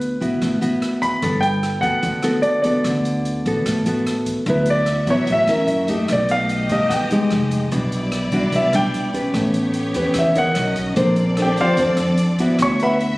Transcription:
Already playing: upright bass D2, nylon-string guitar D3 B3 E4 F#4, grand piano B4
0.01 closed hi-hat
0.20 upright bass A1, nylon-string guitar B3 E4 F#4, kick, closed hi-hat
0.41 upright bass A1, nylon-string guitar A3, kick, cross-stick, closed hi-hat
0.61 upright bass A1, nylon-string guitar B3 E4 F#4, closed hi-hat
0.82 cross-stick, closed hi-hat
1.02 grand piano B5, kick, closed hi-hat
1.22 upright bass G1, nylon-string guitar G3 B3 A4, kick, closed hi-hat
1.41 grand piano G5, closed hi-hat
1.63 cross-stick, closed hi-hat
1.81 upright bass D2, nylon-string guitar B3 F#4 A4, grand piano F#5, kick, closed hi-hat
2.03 upright bass D2, nylon-string guitar D3, kick, closed hi-hat
2.23 upright bass D2, nylon-string guitar B3 F#4 A4, cross-stick, closed hi-hat
2.42 grand piano D5, closed hi-hat
2.62 nylon-string guitar B3 F#4 A4, grand piano D5, kick, closed hi-hat
2.84 upright bass D2, nylon-string guitar D3, kick, cross-stick, closed hi-hat
3.05 closed hi-hat
3.25 closed hi-hat
3.46 upright bass A1, nylon-string guitar B3 F#4 A4, kick, closed hi-hat
3.66 upright bass A1, nylon-string guitar A2, kick, cross-stick, closed hi-hat
3.86 upright bass A1, nylon-string guitar B3 F#4 A4, closed hi-hat
4.07 cross-stick, closed hi-hat
4.26 kick, closed hi-hat
4.46 upright bass D2, nylon-string guitar D3 F#3 B3 E4, string section B3 F#4 E5, kick, closed hi-hat
4.50 grand piano B4
4.66 closed hi-hat
4.70 grand piano D5
4.86 cross-stick, closed hi-hat
5.07 upright bass A1, nylon-string guitar F#3 B3 E4, grand piano C#5, kick, closed hi-hat
5.27 upright bass A1, nylon-string guitar A2, kick, closed hi-hat
5.32 grand piano E5
5.47 upright bass E2, nylon-string guitar C#4 E4 A#4, cross-stick, closed hi-hat
5.67 upright bass F#2, string section A#3, closed hi-hat
5.88 nylon-string guitar A3 D#4 G4, kick, closed hi-hat
6.07 upright bass B1, nylon-string guitar B2, string section A3 G4 D#5, kick, cross-stick, closed hi-hat
6.13 grand piano D5
6.29 grand piano F5, closed hi-hat
6.49 closed hi-hat
6.69 upright bass G2, nylon-string guitar A3 D#4 G4, grand piano D#5, kick, closed hi-hat
6.89 upright bass G2, nylon-string guitar B2, grand piano F#5, kick, cross-stick, closed hi-hat
6.93 grand piano G5
7.11 upright bass G2, nylon-string guitar G#3 D#4 G4, closed hi-hat
7.30 upright bass F1, string section G#3, cross-stick, closed hi-hat
7.51 kick, closed hi-hat
7.71 upright bass B1, nylon-string guitar B2 G3 D4 F#4, string section G3 E4 D5, kick, closed hi-hat
7.92 closed hi-hat
8.12 cross-stick, closed hi-hat
8.32 upright bass B1, nylon-string guitar G3 D4 F#4, kick, closed hi-hat
8.52 upright bass B1, nylon-string guitar B2, grand piano E5, kick, closed hi-hat
8.73 upright bass B1, nylon-string guitar G3 D4, grand piano G5, cross-stick, closed hi-hat
8.94 closed hi-hat
9.13 nylon-string guitar C#4 G4 B4, kick, closed hi-hat
9.32 upright bass A1, nylon-string guitar A3, string section B3 G4 C#5, kick, cross-stick, closed hi-hat
9.54 closed hi-hat
9.74 closed hi-hat
9.94 upright bass E2, nylon-string guitar C#4 G4 B4, kick, closed hi-hat
10.14 upright bass E2, nylon-string guitar E3, kick, cross-stick, closed hi-hat
10.19 grand piano E5
10.35 upright bass E2, nylon-string guitar D#4 A#4 C#5, grand piano F#5, closed hi-hat
10.54 upright bass B1, string section C#4 A#4 D#5, cross-stick, closed hi-hat
10.76 kick, closed hi-hat
10.93 upright bass A#1, nylon-string guitar A#3 D4 A4 C5, string section C4 A4 D5, kick, closed hi-hat
11.16 closed hi-hat
11.37 nylon-string guitar D4 A4 C5, cross-stick, closed hi-hat
11.42 grand piano G4 G5
11.57 upright bass F2, grand piano F4 D5 F5, kick, closed hi-hat
11.61 grand piano C5
11.77 upright bass F2, nylon-string guitar F3 D4 A4 C5, kick, closed hi-hat
11.97 upright bass F2, cross-stick, closed hi-hat
12.17 closed hi-hat
12.39 nylon-string guitar B3 E4 F#4, kick, closed hi-hat
12.57 upright bass D2, nylon-string guitar D3, string section B3 F#4 E5, kick, cross-stick, closed hi-hat
12.62 grand piano C#5 C#6
12.80 grand piano B4 E5 F#5 B5, closed hi-hat
13.00 closed hi-hat

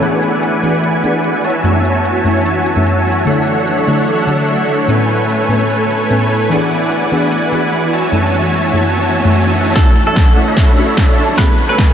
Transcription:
Already playing: ambient pad E3 B3 G#5
0.01 synth pluck E3 B3 D4 F#4 G#4, supersaw synth E4 B4 D5 F#5 G#5, closed hi-hat
0.23 closed hi-hat
0.43 closed hi-hat
0.62 synth pluck E3 B3 D4 F#4 G#4, closed hi-hat
0.69 closed hi-hat
0.75 closed hi-hat
0.79 closed hi-hat
0.84 closed hi-hat
1.03 synth pluck E3 B3 D4 F#4 G#4, closed hi-hat
1.24 closed hi-hat
1.44 ambient pad E3 F#3 A3 F#4 C#5, supersaw synth F#4 C#5 E5 G#5 A5, closed hi-hat
1.50 closed hi-hat
1.63 synth pluck F#2 A3 C#4 E4, closed hi-hat
1.85 closed hi-hat
2.05 closed hi-hat
2.24 synth pluck F#2 A3 C#4 E4, closed hi-hat
2.31 closed hi-hat
2.37 closed hi-hat
2.41 closed hi-hat
2.46 closed hi-hat
2.66 closed hi-hat
2.75 synth pluck F#2 A3 C#4 E4
2.86 closed hi-hat
3.07 closed hi-hat
3.12 closed hi-hat
3.25 synth pluck D3 A3 E4 C#5, ambient pad D3, supersaw synth D4 A4 C#5 E5 F#5, closed hi-hat
3.29 synth pluck F#4
3.47 closed hi-hat
3.68 closed hi-hat
3.87 synth pluck D3 A3 E4 F#4 C#5, closed hi-hat
3.93 closed hi-hat
3.99 closed hi-hat
4.03 closed hi-hat
4.08 closed hi-hat
4.26 synth pluck D3 A3 E4 C#5, closed hi-hat
4.30 synth pluck F#4
4.49 closed hi-hat
4.69 closed hi-hat
4.74 closed hi-hat
4.87 synth pluck A2 B3 C#4 E4 G#5, ambient pad E3 B3 G#5, supersaw synth A3 A4 B4 C#5 G#5, closed hi-hat
5.09 closed hi-hat
5.30 closed hi-hat
5.48 synth pluck A2 B3 C#4 E4, closed hi-hat
5.52 synth pluck G#5, closed hi-hat
5.61 closed hi-hat
5.66 closed hi-hat
5.70 closed hi-hat
5.90 closed hi-hat
6.10 synth pluck A2 B3 C#4 E4 G#5, closed hi-hat
6.31 closed hi-hat
6.37 closed hi-hat
6.49 synth pluck E3 B3 D4 F#4, supersaw synth E4 B4 D5 F#5 G#5, closed hi-hat, riser
6.53 synth pluck G#4
6.72 closed hi-hat
6.92 closed hi-hat
7.11 synth pluck E3 B3 D4 F#4 G#4, closed hi-hat
7.18 closed hi-hat
7.23 closed hi-hat
7.28 closed hi-hat
7.32 closed hi-hat
7.52 synth pluck E3 B3 D4 F#4 G#4, closed hi-hat
7.73 closed hi-hat
7.93 ambient pad F#3 A3 C#4 F#4, supersaw synth F#4 C#5 E5 G#5 A5, closed hi-hat
7.99 closed hi-hat
8.11 synth pluck F#2 A3 C#4 E4, closed hi-hat
8.34 closed hi-hat
8.54 closed hi-hat
8.72 synth pluck F#2 A3 C#4 E4, closed hi-hat
8.80 closed hi-hat
8.85 closed hi-hat
8.90 closed hi-hat
8.94 closed hi-hat
9.15 closed hi-hat
9.24 synth pluck F#2 A3 C#4 E4
9.35 closed hi-hat
9.55 closed hi-hat
9.61 closed hi-hat
9.74 ambient pad D3 F#3 A3 F#4 C#5, synth pluck A3 C#4 E4 F#4, supersaw synth D4 A4 C#5 E5 F#5, clean electric guitar A4, kick, snare, closed hi-hat, riser
9.96 closed hi-hat
10.07 supersaw synth D4 A4 C#5 E5 F#5, clean electric guitar A4
10.16 kick, snare, closed hi-hat
10.36 synth pluck A3 C#4 E4 F#4, closed hi-hat
10.42 closed hi-hat
10.47 supersaw synth D4 A4 C#5 E5 B5, closed hi-hat
10.52 closed hi-hat
10.57 kick, snare, closed hi-hat
10.75 synth pluck A3 C#4 E4 F#4, supersaw synth D4 A4 C#5 E5 B5, closed hi-hat
10.97 kick, snare, closed hi-hat
11.08 supersaw synth D4 A4 C#5 E5 A5
11.17 closed hi-hat
11.23 closed hi-hat
11.36 ambient pad E3 A3 B3 G#5, supersaw synth A3 A4 B4 C#5 G#5, synth pluck B3 C#4 E4, clean electric guitar B4, kick, snare, closed hi-hat
11.40 synth pluck G#4
11.58 closed hi-hat
11.69 supersaw synth A3 A4 B4 C#5 G#5, clean electric guitar B4
11.78 kick, snare, closed hi-hat

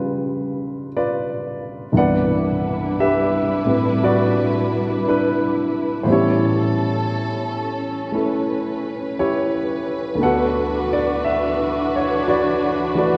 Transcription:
Already playing: grand piano G2 C#3 F3 G3 B3 F4 A4 B4 D5 E5 G5
0.97 grand piano F4 B4 D5
1.92 grand piano C2 G2 E3 B3, string section D4 E4 B4
1.97 string section G3, grand piano D4 B4 D5 F#5
3.00 grand piano G4 B4 E5
3.65 grand piano A2 G3 C4 E4 B4
4.04 grand piano F#4 B4 D5
5.08 grand piano D4 E4 B4
6.03 grand piano A2 E3 B3 C#4 C5, string section C#4 A4
6.09 grand piano G3 E4 G4 C#5
8.10 grand piano A3 C#4, string section B4
8.14 grand piano E4 A4
9.19 grand piano E4 G4 C#5
10.15 grand piano D2 D3 B3, string section E3 D4 F#4
10.21 grand piano D4 F#4 A4 B4 F#5
10.93 grand piano D5
11.25 grand piano E5
11.96 grand piano C#5
12.28 grand piano F#4 B4 D5
12.95 grand piano E3 A3 F#4 B4 D5

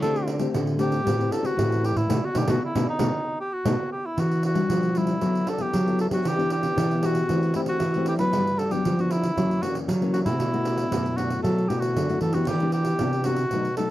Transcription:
0.02 nylon-string guitar D3 A3 C4 G4, cor anglais A4, pandeiro
0.16 pandeiro
0.28 pandeiro
0.39 nylon-string guitar A3 C4 G4, pandeiro
0.54 nylon-string guitar A2 D3, pandeiro
0.67 pandeiro
0.79 nylon-string guitar A3 C4 G4, cor anglais G4, pandeiro
0.92 pandeiro
1.05 nylon-string guitar A2 A3 C4 G4 B4, pandeiro
1.19 nylon-string guitar C4 G4 B4, pandeiro
1.32 cor anglais A4, pandeiro
1.42 nylon-string guitar C4 G4 B4, cor anglais F#4, pandeiro
1.56 nylon-string guitar A2 E3 C4 G4 B4, pandeiro
1.72 pandeiro
1.84 cor anglais G4, pandeiro
1.96 nylon-string guitar A2, cor anglais E4, pandeiro
2.09 nylon-string guitar B2 A3 B3 D#4, pandeiro
2.25 cor anglais F#4
2.35 nylon-string guitar B2 A3 B3 D#4, cor anglais G4, pandeiro
2.47 nylon-string guitar B2 A3 B3 D#4, cor anglais F#4, pandeiro
2.64 cor anglais E4
2.75 nylon-string guitar B2 A3 B3 D#4, pandeiro
2.89 cor anglais D#4
2.99 nylon-string guitar B2 A3 B3 D#4, pandeiro
3.40 cor anglais G4
3.53 cor anglais F#4
3.65 nylon-string guitar B2 A3 B3 D#4, pandeiro
3.92 cor anglais G4
4.06 cor anglais E4
4.17 nylon-string guitar E3, cor anglais F#4, pandeiro
4.31 pandeiro
4.43 cor anglais F#4, pandeiro
4.54 nylon-string guitar G3 D4 F#4, pandeiro
4.70 nylon-string guitar B2 F3, pandeiro
4.83 pandeiro
4.95 nylon-string guitar G3 D4 F#4, cor anglais E4, pandeiro
5.07 pandeiro
5.21 nylon-string guitar F#3 B3 E4 A4, pandeiro
5.35 pandeiro
5.47 cor anglais A4, pandeiro
5.58 nylon-string guitar B3 E4 A4, cor anglais G4, pandeiro
5.74 nylon-string guitar F#3, pandeiro
5.87 nylon-string guitar B3 E4 A4, pandeiro
5.99 cor anglais A4, pandeiro
6.11 nylon-string guitar F#3 B3 D4 G4, cor anglais F#4, pandeiro
6.25 nylon-string guitar E3, cor anglais G4, pandeiro
6.38 nylon-string guitar B3 D4 G4, pandeiro
6.50 cor anglais G4, pandeiro
6.63 pandeiro
6.76 nylon-string guitar B2 E3 B3 D4 G4, pandeiro
6.91 pandeiro
7.02 nylon-string guitar B3 D4 G4, cor anglais F#4, pandeiro
7.15 pandeiro
7.29 nylon-string guitar E3 A3 C4 G4, pandeiro
7.43 pandeiro
7.54 nylon-string guitar A3 C4 G4, cor anglais E4, pandeiro
7.66 cor anglais F#4, pandeiro
7.80 nylon-string guitar E3, pandeiro
7.94 nylon-string guitar A3 C4 G4, pandeiro
8.06 cor anglais G4, pandeiro
8.19 nylon-string guitar F#3 B3 D4, cor anglais B4, pandeiro
8.33 nylon-string guitar G2 G3, pandeiro
8.47 pandeiro
8.59 cor anglais A4, pandeiro
8.71 nylon-string guitar F#3 B3 D4, cor anglais G4, pandeiro
8.85 nylon-string guitar D3 F3, pandeiro
8.99 nylon-string guitar B3 D4, cor anglais F#4, pandeiro
9.11 cor anglais E4, pandeiro
9.23 pandeiro
9.36 nylon-string guitar F#2 E3 F#3 A#3 C#4, pandeiro
9.51 pandeiro
9.62 nylon-string guitar E3 A#3 C#4, cor anglais F#4, pandeiro
9.75 pandeiro
9.88 nylon-string guitar C#3 F#3, pandeiro
10.01 nylon-string guitar E3 A#3 C#4, pandeiro
10.13 cor anglais F#4, pandeiro
10.25 nylon-string guitar C3 A3 E4 F#4, cor anglais E4, pandeiro
10.40 nylon-string guitar B2, pandeiro
10.53 nylon-string guitar A3 E4 F#4, pandeiro
10.65 pandeiro
10.78 pandeiro
10.91 nylon-string guitar F#2 B2 A3 E4 F#4, pandeiro
11.06 pandeiro
11.17 nylon-string guitar A3 E4 F#4, cor anglais F#4, pandeiro
11.30 pandeiro
11.43 nylon-string guitar B2 F#3, cor anglais A4, pandeiro
11.58 pandeiro
11.68 nylon-string guitar B2 A3 E4 F#4, cor anglais G4, pandeiro
11.80 cor anglais F#4, pandeiro
11.96 nylon-string guitar F#2 D3, pandeiro
12.09 nylon-string guitar A3 E4 F#4, pandeiro
12.21 nylon-string guitar E3, cor anglais A4, pandeiro
12.33 nylon-string guitar B3 D4 G4, cor anglais F#4, pandeiro
12.47 nylon-string guitar E3, cor anglais G4, pandeiro
12.60 nylon-string guitar B3 D4 G4, pandeiro
12.72 cor anglais G4, pandeiro
12.85 pandeiro
12.99 nylon-string guitar C3 B3 D4 G4, pandeiro
13.13 pandeiro
13.24 nylon-string guitar B3 D4 G4, cor anglais F#4, pandeiro
13.36 pandeiro
13.51 nylon-string guitar B2 F#3 A3 D#4, pandeiro
13.65 pandeiro
13.77 nylon-string guitar F#3 A3 D#4, cor anglais A4, pandeiro

